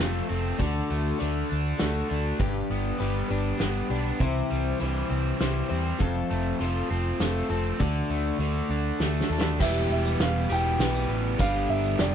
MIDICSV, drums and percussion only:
0, 0, Header, 1, 2, 480
1, 0, Start_track
1, 0, Tempo, 599401
1, 482, Time_signature, 3, 2, 24, 8
1, 9729, End_track
2, 0, Start_track
2, 0, Title_t, "Drums"
2, 477, Note_on_c, 9, 36, 90
2, 480, Note_on_c, 9, 42, 62
2, 557, Note_off_c, 9, 36, 0
2, 560, Note_off_c, 9, 42, 0
2, 959, Note_on_c, 9, 42, 59
2, 1040, Note_off_c, 9, 42, 0
2, 1437, Note_on_c, 9, 38, 67
2, 1437, Note_on_c, 9, 42, 57
2, 1517, Note_off_c, 9, 38, 0
2, 1517, Note_off_c, 9, 42, 0
2, 1920, Note_on_c, 9, 36, 101
2, 1922, Note_on_c, 9, 42, 60
2, 2000, Note_off_c, 9, 36, 0
2, 2002, Note_off_c, 9, 42, 0
2, 2402, Note_on_c, 9, 42, 52
2, 2482, Note_off_c, 9, 42, 0
2, 2883, Note_on_c, 9, 38, 67
2, 2883, Note_on_c, 9, 42, 51
2, 2963, Note_off_c, 9, 38, 0
2, 2963, Note_off_c, 9, 42, 0
2, 3365, Note_on_c, 9, 42, 54
2, 3366, Note_on_c, 9, 36, 108
2, 3445, Note_off_c, 9, 42, 0
2, 3446, Note_off_c, 9, 36, 0
2, 3844, Note_on_c, 9, 42, 50
2, 3924, Note_off_c, 9, 42, 0
2, 4329, Note_on_c, 9, 38, 70
2, 4329, Note_on_c, 9, 42, 56
2, 4409, Note_off_c, 9, 38, 0
2, 4409, Note_off_c, 9, 42, 0
2, 4806, Note_on_c, 9, 42, 64
2, 4808, Note_on_c, 9, 36, 99
2, 4886, Note_off_c, 9, 42, 0
2, 4888, Note_off_c, 9, 36, 0
2, 5290, Note_on_c, 9, 42, 58
2, 5370, Note_off_c, 9, 42, 0
2, 5769, Note_on_c, 9, 38, 68
2, 5769, Note_on_c, 9, 42, 52
2, 5849, Note_off_c, 9, 38, 0
2, 5849, Note_off_c, 9, 42, 0
2, 6248, Note_on_c, 9, 42, 58
2, 6249, Note_on_c, 9, 36, 100
2, 6328, Note_off_c, 9, 42, 0
2, 6329, Note_off_c, 9, 36, 0
2, 6731, Note_on_c, 9, 42, 52
2, 6811, Note_off_c, 9, 42, 0
2, 7209, Note_on_c, 9, 38, 56
2, 7289, Note_off_c, 9, 38, 0
2, 7372, Note_on_c, 9, 38, 50
2, 7452, Note_off_c, 9, 38, 0
2, 7536, Note_on_c, 9, 38, 91
2, 7616, Note_off_c, 9, 38, 0
2, 7690, Note_on_c, 9, 49, 107
2, 7691, Note_on_c, 9, 36, 115
2, 7693, Note_on_c, 9, 54, 104
2, 7770, Note_off_c, 9, 49, 0
2, 7771, Note_off_c, 9, 36, 0
2, 7773, Note_off_c, 9, 54, 0
2, 8049, Note_on_c, 9, 54, 80
2, 8129, Note_off_c, 9, 54, 0
2, 8169, Note_on_c, 9, 38, 83
2, 8169, Note_on_c, 9, 42, 77
2, 8249, Note_off_c, 9, 38, 0
2, 8249, Note_off_c, 9, 42, 0
2, 8408, Note_on_c, 9, 54, 104
2, 8488, Note_off_c, 9, 54, 0
2, 8650, Note_on_c, 9, 38, 75
2, 8650, Note_on_c, 9, 42, 69
2, 8730, Note_off_c, 9, 38, 0
2, 8730, Note_off_c, 9, 42, 0
2, 8770, Note_on_c, 9, 54, 73
2, 8850, Note_off_c, 9, 54, 0
2, 9123, Note_on_c, 9, 42, 75
2, 9126, Note_on_c, 9, 36, 109
2, 9126, Note_on_c, 9, 54, 100
2, 9203, Note_off_c, 9, 42, 0
2, 9206, Note_off_c, 9, 36, 0
2, 9206, Note_off_c, 9, 54, 0
2, 9481, Note_on_c, 9, 54, 81
2, 9561, Note_off_c, 9, 54, 0
2, 9602, Note_on_c, 9, 38, 85
2, 9602, Note_on_c, 9, 42, 68
2, 9610, Note_on_c, 9, 54, 29
2, 9682, Note_off_c, 9, 38, 0
2, 9682, Note_off_c, 9, 42, 0
2, 9690, Note_off_c, 9, 54, 0
2, 9729, End_track
0, 0, End_of_file